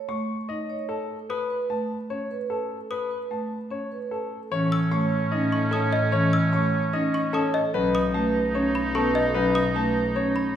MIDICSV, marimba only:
0, 0, Header, 1, 2, 480
1, 0, Start_track
1, 0, Tempo, 402685
1, 1545, Time_signature, 4, 2, 24, 8
1, 12588, End_track
2, 0, Start_track
2, 0, Title_t, "Marimba"
2, 0, Program_c, 0, 12
2, 105, Note_on_c, 0, 57, 58
2, 417, Note_off_c, 0, 57, 0
2, 593, Note_on_c, 0, 63, 56
2, 900, Note_off_c, 0, 63, 0
2, 2025, Note_on_c, 0, 57, 50
2, 2337, Note_off_c, 0, 57, 0
2, 2507, Note_on_c, 0, 61, 48
2, 2818, Note_off_c, 0, 61, 0
2, 3944, Note_on_c, 0, 57, 45
2, 4257, Note_off_c, 0, 57, 0
2, 4417, Note_on_c, 0, 61, 46
2, 4734, Note_off_c, 0, 61, 0
2, 5383, Note_on_c, 0, 52, 81
2, 5696, Note_off_c, 0, 52, 0
2, 5862, Note_on_c, 0, 57, 69
2, 6176, Note_off_c, 0, 57, 0
2, 6339, Note_on_c, 0, 63, 66
2, 6655, Note_off_c, 0, 63, 0
2, 6820, Note_on_c, 0, 61, 83
2, 7136, Note_off_c, 0, 61, 0
2, 7302, Note_on_c, 0, 52, 84
2, 7616, Note_off_c, 0, 52, 0
2, 7787, Note_on_c, 0, 57, 68
2, 8098, Note_off_c, 0, 57, 0
2, 8267, Note_on_c, 0, 63, 72
2, 8578, Note_off_c, 0, 63, 0
2, 8749, Note_on_c, 0, 61, 78
2, 9059, Note_off_c, 0, 61, 0
2, 9226, Note_on_c, 0, 54, 83
2, 9538, Note_off_c, 0, 54, 0
2, 9708, Note_on_c, 0, 57, 73
2, 10018, Note_off_c, 0, 57, 0
2, 10193, Note_on_c, 0, 61, 66
2, 10500, Note_off_c, 0, 61, 0
2, 10670, Note_on_c, 0, 59, 87
2, 10979, Note_off_c, 0, 59, 0
2, 11144, Note_on_c, 0, 54, 90
2, 11457, Note_off_c, 0, 54, 0
2, 11619, Note_on_c, 0, 57, 72
2, 11935, Note_off_c, 0, 57, 0
2, 12109, Note_on_c, 0, 61, 72
2, 12419, Note_off_c, 0, 61, 0
2, 12588, End_track
0, 0, End_of_file